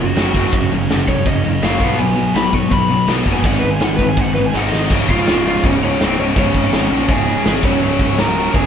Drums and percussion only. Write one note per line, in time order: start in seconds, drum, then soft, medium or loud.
0.16 snare loud
0.16 crash medium
0.35 kick medium
0.53 kick loud
0.53 crash medium
0.90 snare loud
0.90 crash medium
1.08 kick medium
1.26 kick loud
1.26 crash medium
1.62 snare loud
1.62 crash medium
1.80 kick loud
1.99 crash medium
2.35 snare loud
2.35 crash medium
2.53 kick medium
2.71 kick loud
2.71 crash medium
3.08 snare loud
3.08 crash medium
3.26 kick medium
3.44 kick loud
3.44 crash medium
3.80 snare loud
3.80 crash medium
3.99 kick medium
4.17 kick loud
4.17 crash medium
4.54 snare medium
4.72 snare medium
4.90 kick loud
4.90 crash loud
5.09 kick medium
5.27 snare loud
5.27 open hi-hat medium
5.63 kick loud
5.63 open hi-hat medium
6.00 snare loud
6.00 open hi-hat medium
6.36 kick loud
6.36 open hi-hat medium
6.54 kick loud
6.72 snare loud
6.72 open hi-hat medium
7.08 kick loud
7.08 open hi-hat medium
7.45 snare loud
7.45 open hi-hat medium
7.63 kick loud
7.81 open hi-hat medium
7.99 kick loud
8.18 snare loud
8.18 open hi-hat medium
8.54 kick loud
8.54 open hi-hat medium